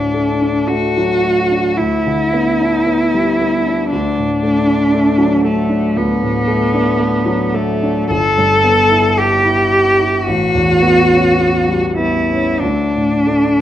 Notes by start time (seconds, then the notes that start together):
Already playing: D2 A2 D4
0.14 A3
0.42 D4
0.67 A3 F#4
0.97 F#3
1.24 A3
1.51 D4
1.77 D2 E4
2.06 D3
2.33 B3
2.60 D4
2.86 B3
3.14 G3
3.41 B3
3.66 D4
3.90 D2 D4
4.17 A2
4.43 A3
4.67 D4
4.94 A3
5.18 F#3
5.44 A3
5.70 D4
5.97 D2 B3
6.23 A2
6.47 A3
6.74 D4
6.99 A3
7.26 F#3
7.53 A3
7.83 D4
8.10 G1 A4
8.38 G2
8.64 B3
8.89 E4
9.17 G4
9.44 E4
9.72 G4
10.00 E4
10.26 A1 F#4
10.55 E2
10.82 B3
11.11 C#4
11.40 B3
11.68 G3
11.97 B3 E4
12.31 C#4
12.60 D2 D4
12.95 A2
13.27 A3